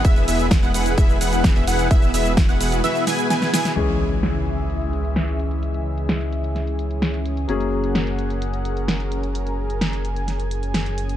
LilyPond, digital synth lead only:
\new Staff \with { instrumentName = "Digital synth lead" } { \time 4/4 \key cis \dorian \tempo 4 = 129 e''8 e''8 r16 fis''16 fis''8 e''8 fis''8. e''16 fis''8 | e''8 e''8 r16 fis''16 fis''8 e''8 gis''8 gis''8 gis''8 | r1 | r1 |
r1 | r1 | }